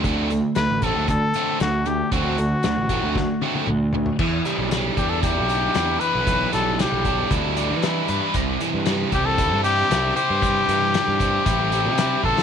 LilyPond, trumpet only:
\new Staff \with { instrumentName = "Trumpet" } { \time 4/4 \key e \minor \tempo 4 = 116 r4 b'8 a'8 a'4 fis'8 g'8 | fis'2. r4 | r4. g'16 a'16 g'4. b'8~ | b'8 a'8 g'4 r2 |
r4. g'16 a'8. g'4 g'8~ | g'2.~ g'8 a'8 | }